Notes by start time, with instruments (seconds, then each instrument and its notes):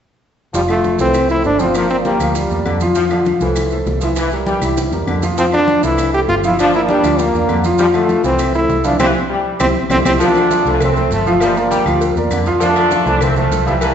0.54 fingered electric bass F1, trombone section F3, grand piano F3 F4 F5, trombone G3, high bongo, maracas
0.69 trombone section D3, grand piano F3 F4 F5, trombone A3, high bongo, high conga, claves, maracas
0.84 high bongo, high conga, maracas
0.99 fingered electric bass C2, trombone section E3, grand piano A3 A4 C5, trombone C4, high bongo, high conga, maracas
1.14 high bongo, claves, maracas
1.29 grand piano A3 A4 C5, trombone E4, high conga, maracas
1.44 fingered electric bass G1, trombone D4, high bongo, low bongo, maracas
1.59 trombone section F3, grand piano F3 F4 F5, trombone C4, high bongo, high conga, maracas
1.75 trombone section F3, trombone A#3, high bongo, high conga, claves, maracas
1.90 grand piano A#3 A#4 D5, trombone C4, high bongo, high conga, maracas
2.05 trombone section G3, trombone A#3, high bongo, high conga, maracas
2.20 fingered electric bass D2, grand piano F3 F4 F5, high bongo, high conga, claves, maracas
2.35 trombone G3, high bongo, maracas
2.50 fingered electric bass E2, grand piano A#3 A#4 D5, high conga, maracas
2.65 fingered electric bass F2, trombone section D3, high bongo, low bongo, high conga, claves, maracas
2.80 grand piano F3 F4 F5, high bongo, high conga, maracas
2.95 trombone section F3, grand piano F3 F4 F5, high bongo, maracas
3.10 trombone section D3, grand piano F3 F4 F5, high bongo, high conga, claves, maracas
3.26 high bongo, high conga, maracas
3.41 fingered electric bass C2, trombone section E3, grand piano A3 A4 C5, high bongo, high conga, maracas
3.56 high bongo, high conga, claves, maracas
3.71 grand piano A3 A4 C5, high conga, maracas
3.86 fingered electric bass C2, high bongo, low bongo, high conga, maracas
4.01 grand piano E3 E4 E5, trombone section F3, high bongo, high conga, maracas
4.16 trombone section E3, high bongo, high conga, claves, maracas
4.32 grand piano G3 G4 A#4, high bongo, high conga, maracas
4.46 trombone section G3, high bongo, high conga, maracas
4.62 fingered electric bass C2, grand piano E3 E4 E5, high bongo, high conga, claves, maracas
4.77 high bongo, high conga, maracas
4.92 fingered electric bass E2, grand piano G3 G4 A#4, low bongo, high conga, maracas
5.07 fingered electric bass F2, trombone section D3, low bongo, high conga, claves, maracas
5.22 grand piano F3 F4 F5, low bongo, high conga, maracas
5.38 grand piano F3 F4 F5, trombone section F3, trombone C4, high bongo, high conga, maracas
5.52 trombone section D3, grand piano F3 F4 F5, trombone D4, high bongo, high conga, claves, maracas
5.68 high bongo, high conga, maracas
5.83 fingered electric bass C2, trombone section E3, grand piano A3 A4 C5, trombone E4, high bongo, high conga, maracas
5.98 high bongo, high conga, claves, maracas
6.13 grand piano A3 A4 C5, trombone G4, high conga, maracas
6.28 fingered electric bass G1, trombone F4, high bongo, low bongo, maracas
6.44 grand piano F3 F4 F5, trombone section F3, trombone E4, high bongo, high conga, maracas
6.59 trombone section F3, trombone D4, high bongo, high conga, claves, maracas
6.74 grand piano A#3 A#4 D5, trombone E4, high bongo, high conga, maracas
6.88 trombone section G3, trombone D4, high bongo, high conga, maracas
7.03 fingered electric bass D2, grand piano F3 F4 F5, high bongo, high conga, claves, maracas
7.18 trombone A#3, high bongo, high conga, maracas
7.34 fingered electric bass E2, grand piano A#3 A#4 D5, maracas
7.48 fingered electric bass F2, trombone section D3, high bongo, low bongo, high conga, claves, maracas
7.64 grand piano F3 F4 F5, high bongo, high conga, maracas
7.78 trombone section F3, grand piano F3 F4 F5, trombone G3, high bongo, high conga, maracas
7.94 trombone section D3, grand piano F3 F4 F5, trombone A3, high bongo, high conga, claves, maracas
8.09 high bongo, high conga, maracas
8.23 fingered electric bass C2, trombone section E3, grand piano A3 A4 C5, trombone C4, high bongo, high conga, maracas
8.39 high bongo, high conga, claves, maracas
8.54 grand piano A3 A4 C5, trombone E4, high conga, maracas
8.69 fingered electric bass C2, high bongo, low bongo, maracas
8.84 grand piano E3 E4 E5, trombone section F3, trombone D4, high bongo, high conga, maracas
8.99 fingered electric bass C2, trombone section E3, trombone C4, grand piano C4 E4 G4, low bongo, high conga, claves, maracas
9.30 trombone section G3
9.60 fingered electric bass C2, trombone C4, grand piano C4 E4 G4, low bongo, high conga, claves, maracas
9.90 fingered electric bass C2, trombone section D3, trombone C4, grand piano C4 E4 G4, low bongo, high conga, claves, maracas
10.05 fingered electric bass C2, trombone C4, grand piano C4 E4 G4, low bongo, high conga, claves, maracas
10.20 trombone section F3 A3 D4, grand piano F3 F4 F5, cowbell, high conga, maracas
10.35 trombone section D3, cowbell, high conga, claves, maracas
10.51 grand piano F3 F4 F5, cowbell, high conga, maracas
10.65 fingered electric bass C2, trombone section E3, grand piano A3 A4 C5, high conga, maracas
10.80 trombone section A3 C4, cowbell, high conga, low conga, claves, maracas
10.96 grand piano A3 A4 C5, maracas
11.11 fingered electric bass G1, trombone section F3 A3, cowbell, high conga, maracas
11.26 trombone section F3, grand piano F3 F4 F5, high conga, maracas
11.40 trombone section D3 F3 G3, grand piano A#3 A#4 D5, cowbell, high conga, claves, maracas
11.56 trombone section D3 F3, grand piano A#3 A#4 D5, high conga, maracas
11.71 trombone section G3, cowbell, high conga, maracas
11.86 fingered electric bass D2, grand piano F3 F4 F5, high conga, claves, maracas
12.01 cowbell, maracas
12.16 fingered electric bass E2, grand piano A#3 A#4 D5, maracas
12.30 fingered electric bass F2, trombone section D3, cowbell, high conga, claves, maracas
12.46 grand piano F3 F4 F5, cowbell, high conga, maracas
12.60 trombone section F3 A3 D4, grand piano F3 F4 F5, cowbell, high conga, maracas
12.75 trombone section D3, cowbell, high conga, claves, maracas
12.91 grand piano F3 F4 F5, cowbell, high conga, maracas
13.05 fingered electric bass C2, trombone section E3, grand piano A3 A4 C5, maracas
13.21 trombone section A3 C4, cowbell, high conga, low conga, claves, maracas
13.36 trombone section F3 A3, grand piano A3 A4 C5, high conga, low conga, maracas
13.51 fingered electric bass C2, cowbell, high conga, maracas
13.65 grand piano E3 E4 E5, trombone section E3 F3 G3, high conga, maracas
13.80 trombone section E3 A3, grand piano G3 G4 A#4, cowbell, high conga, claves, maracas